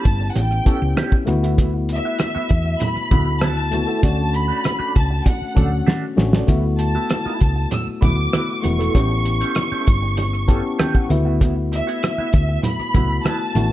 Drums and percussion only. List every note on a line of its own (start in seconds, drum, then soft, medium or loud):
0.05 kick medium
0.05 closed hi-hat medium
0.36 closed hi-hat medium
0.36 muted conga soft
0.51 cross-stick soft
0.66 kick medium
0.66 closed hi-hat medium
0.97 cross-stick loud
0.97 closed hi-hat medium
0.97 high conga medium
1.12 kick medium
1.27 closed hi-hat medium
1.27 high conga medium
1.44 closed hi-hat medium
1.58 kick medium
1.58 closed hi-hat medium
1.58 muted conga soft
1.89 closed hi-hat medium
2.19 cross-stick medium
2.19 closed hi-hat medium
2.19 high conga medium
2.49 kick medium
2.49 closed hi-hat medium
2.80 closed hi-hat medium
2.80 muted conga soft
2.80 low conga medium
2.96 cross-stick soft
3.11 kick medium
3.11 closed hi-hat medium
3.11 muted conga soft
3.11 low conga medium
3.41 cross-stick loud
3.41 closed hi-hat medium
3.41 high conga medium
3.72 closed hi-hat medium
3.72 high conga medium
4.03 kick medium
4.03 closed hi-hat medium
4.03 muted conga soft
4.34 closed hi-hat medium
4.64 cross-stick medium
4.64 closed hi-hat medium
4.64 high conga medium
4.96 kick medium
4.96 closed hi-hat medium
5.26 kick medium
5.26 closed hi-hat medium
5.26 muted conga soft
5.57 kick medium
5.57 closed hi-hat medium
5.57 muted conga soft
5.57 low conga medium
5.87 snare medium
5.87 high conga medium
6.18 snare medium
6.18 high conga medium
6.33 snare medium
6.48 kick loud
6.48 closed hi-hat medium
6.48 muted conga soft
6.79 closed hi-hat medium
7.10 cross-stick medium
7.10 closed hi-hat medium
7.10 high conga medium
7.40 kick medium
7.40 closed hi-hat medium
7.71 closed hi-hat medium
7.71 muted conga soft
7.71 low conga medium
8.02 kick medium
8.02 closed hi-hat medium
8.02 low conga medium
8.33 cross-stick loud
8.33 closed hi-hat medium
8.33 high conga medium
8.64 closed hi-hat medium
8.64 high conga medium
8.81 closed hi-hat medium
8.95 kick loud
8.95 closed hi-hat medium
8.95 muted conga soft
9.25 closed hi-hat medium
9.41 closed hi-hat medium
9.55 cross-stick medium
9.55 closed hi-hat medium
9.55 high conga medium
9.87 kick medium
9.87 closed hi-hat medium
10.17 closed hi-hat medium
10.17 muted conga soft
10.33 cross-stick soft
10.49 kick medium
10.49 closed hi-hat medium
10.49 muted conga soft
10.80 cross-stick loud
10.80 closed hi-hat medium
10.80 high conga medium
10.95 kick medium
11.10 closed hi-hat medium
11.10 high conga medium
11.41 kick medium
11.41 closed hi-hat medium
11.41 muted conga soft
11.73 closed hi-hat medium
11.89 closed hi-hat medium
12.03 cross-stick medium
12.03 closed hi-hat medium
12.03 high conga soft
12.33 kick medium
12.33 closed hi-hat medium
12.63 cross-stick soft
12.63 closed hi-hat medium
12.63 muted conga soft
12.63 low conga medium
12.80 cross-stick soft
12.94 kick medium
12.94 closed hi-hat medium
12.94 low conga medium
13.25 cross-stick loud
13.25 closed hi-hat medium
13.25 high conga medium
13.56 closed hi-hat medium
13.56 high conga medium